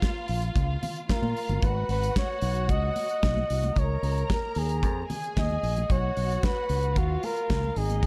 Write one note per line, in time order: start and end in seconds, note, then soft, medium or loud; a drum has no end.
0.00 1.05 F4 medium
0.00 1.05 F5 medium
0.00 kick medium
0.00 snare medium
0.00 closed hi-hat medium
0.00 high conga medium
0.28 0.49 A#1 medium
0.28 open hi-hat medium
0.42 closed hi-hat soft
0.56 0.75 C#2 medium
0.56 kick loud
0.56 closed hi-hat medium
0.56 muted conga medium
0.83 open hi-hat medium
0.83 muted conga soft
0.83 low conga medium
0.96 closed hi-hat soft
1.09 1.62 F4 medium
1.09 1.65 A#4 medium
1.09 1.62 F5 medium
1.09 kick medium
1.09 snare loud
1.09 closed hi-hat medium
1.09 high conga medium
1.22 1.32 A#2 medium
1.22 high conga medium
1.37 open hi-hat medium
1.49 1.59 G1 medium
1.49 closed hi-hat soft
1.49 high conga medium
1.62 1.82 G#1 loud
1.62 3.72 F#4 medium
1.62 1.90 B4 medium
1.62 3.72 F#5 medium
1.62 kick loud
1.62 closed hi-hat medium
1.62 muted conga soft
1.89 2.09 G#1 medium
1.89 2.15 B4 medium
1.89 open hi-hat medium
2.03 closed hi-hat soft
2.16 2.72 C#5 medium
2.16 kick loud
2.16 snare loud
2.16 closed hi-hat medium
2.16 high conga medium
2.41 2.69 B1 medium
2.41 open hi-hat medium
2.55 closed hi-hat soft
2.69 2.89 C#2 medium
2.69 3.81 D#5 loud
2.69 kick loud
2.69 closed hi-hat medium
2.69 muted conga medium
2.96 open hi-hat medium
2.96 muted conga medium
3.09 closed hi-hat soft
3.23 3.43 B1 medium
3.23 kick medium
3.23 snare loud
3.23 closed hi-hat medium
3.23 high conga medium
3.37 high conga medium
3.50 3.69 C2 medium
3.50 open hi-hat medium
3.63 closed hi-hat soft
3.63 high conga medium
3.76 3.96 C#2 loud
3.76 5.07 A#4 medium
3.76 4.31 C#5 medium
3.76 5.07 A#5 medium
3.76 kick loud
3.76 closed hi-hat medium
3.76 muted conga soft
4.03 4.22 C#2 medium
4.03 open hi-hat medium
4.18 closed hi-hat soft
4.30 4.60 A#4 medium
4.30 kick loud
4.30 snare loud
4.30 closed hi-hat medium
4.30 high conga medium
4.55 4.83 D#2 medium
4.55 5.10 G#4 medium
4.55 open hi-hat medium
4.69 closed hi-hat soft
4.83 5.02 F2 loud
4.83 kick loud
4.83 closed hi-hat medium
4.83 muted conga medium
5.10 5.88 G#4 medium
5.10 5.89 G#5 medium
5.10 open hi-hat medium
5.10 muted conga soft
5.10 low conga medium
5.24 closed hi-hat soft
5.37 5.56 D#2 medium
5.37 5.93 D#5 medium
5.37 kick medium
5.37 snare loud
5.37 closed hi-hat medium
5.37 high conga medium
5.51 high conga medium
5.63 5.83 A#1 medium
5.63 open hi-hat medium
5.76 closed hi-hat soft
5.76 high conga medium
5.90 6.09 B1 medium
5.90 6.94 F#4 medium
5.90 6.46 C#5 medium
5.90 6.94 F#5 medium
5.90 kick loud
5.90 closed hi-hat medium
6.17 6.36 B1 medium
6.17 open hi-hat medium
6.32 closed hi-hat soft
6.43 7.00 B4 medium
6.43 kick loud
6.43 snare loud
6.43 closed hi-hat medium
6.43 high conga medium
6.69 6.97 C#2 medium
6.69 open hi-hat medium
6.83 closed hi-hat soft
6.96 7.16 D#2 medium
6.96 7.75 F4 medium
6.96 7.26 F#4 medium
6.96 7.74 F5 medium
6.96 kick loud
6.96 closed hi-hat medium
6.96 muted conga medium
7.23 7.79 A#4 loud
7.23 open hi-hat medium
7.23 muted conga medium
7.36 closed hi-hat soft
7.50 7.69 C#2 medium
7.50 kick medium
7.50 snare loud
7.50 closed hi-hat medium
7.50 high conga medium
7.64 high conga medium
7.76 8.06 G#1 loud
7.76 8.06 D#4 medium
7.76 8.06 G#4 medium
7.76 8.06 D#5 loud
7.76 open hi-hat medium
7.89 closed hi-hat medium
7.89 high conga medium
8.03 kick loud
8.03 closed hi-hat medium